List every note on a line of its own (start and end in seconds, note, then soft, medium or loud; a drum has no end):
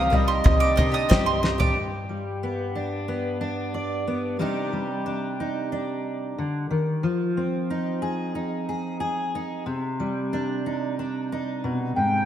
0.00 0.42 C2 medium
0.00 0.11 C3 medium
0.00 1.11 C3 medium
0.00 0.10 C4 medium
0.00 0.78 D#4 medium
0.00 0.12 G4 medium
0.00 1.43 G4 medium
0.00 0.43 D#5 medium
0.00 0.14 F5 medium
0.00 0.60 D#6 medium
0.10 0.28 D#3 medium
0.10 1.73 G3 medium
0.10 0.28 C4 medium
0.10 0.29 D4 medium
0.10 0.26 G4 medium
0.10 floor tom medium
0.14 1.40 D#5 medium
0.28 0.63 C4 soft
0.28 0.59 G4 medium
0.28 0.94 C6 medium
0.44 0.77 C2 medium
0.44 1.11 C4 medium
0.44 0.76 D#5 medium
0.44 kick loud
0.44 floor tom loud
0.60 0.78 D4 soft
0.60 0.77 G4 soft
0.60 0.94 D6 medium
0.64 0.76 C4 soft
0.76 0.94 C3 medium
0.76 0.93 D#3 medium
0.76 0.94 C4 medium
0.76 0.92 D4 medium
0.76 1.73 D#4 medium
0.76 0.90 G4 medium
0.76 1.08 D#5 medium
0.76 floor tom medium
0.92 1.08 C4 soft
0.92 1.10 D4 medium
0.92 1.09 G4 medium
0.92 1.59 D#6 medium
1.09 1.73 C2 medium
1.09 1.76 G2 medium
1.09 1.59 C3 medium
1.09 1.59 D#3 medium
1.09 1.59 C4 medium
1.09 1.73 C4 medium
1.09 1.57 G4 loud
1.09 1.42 D#5 medium
1.09 kick loud
1.09 snare medium
1.26 1.76 C6 medium
1.43 3.74 G4 medium
1.43 1.76 D#5 medium
1.43 snare medium
1.58 1.77 C4 soft
1.58 1.77 D4 soft
1.58 1.76 G4 medium
1.58 1.76 D6 medium
1.58 floor tom medium
1.77 4.40 G2 soft
2.09 4.36 G3 soft
2.43 3.07 B3 soft
2.75 3.40 D4 soft
3.08 4.06 B3 soft
3.41 4.39 D4 soft
3.74 4.36 D5 soft
4.07 4.36 B3 soft
4.39 6.37 C3 soft
4.39 4.72 G3 soft
4.39 5.05 D4 soft
4.39 5.40 D#4 soft
4.39 7.05 G4 soft
4.73 7.00 G3 soft
5.06 5.71 D4 soft
5.40 6.41 D#4 soft
5.72 7.00 D4 soft
6.38 6.70 D3 soft
6.70 7.04 D#3 soft
7.03 9.67 F3 medium
7.37 9.64 C4 soft
7.70 8.35 D#4 soft
8.02 8.68 G#4 soft
8.35 9.34 D#4 soft
8.69 8.99 G#4 soft
9.00 9.63 G#4 soft
9.35 9.64 D#4 soft
9.66 12.25 C3 medium
10.00 12.25 G3 soft
10.33 10.98 D4 soft
10.66 11.31 D#4 soft
10.99 12.25 D4 soft
11.32 12.25 D#4 soft
11.64 11.96 B2 soft
11.96 12.25 G#2 soft
11.96 12.25 G5 medium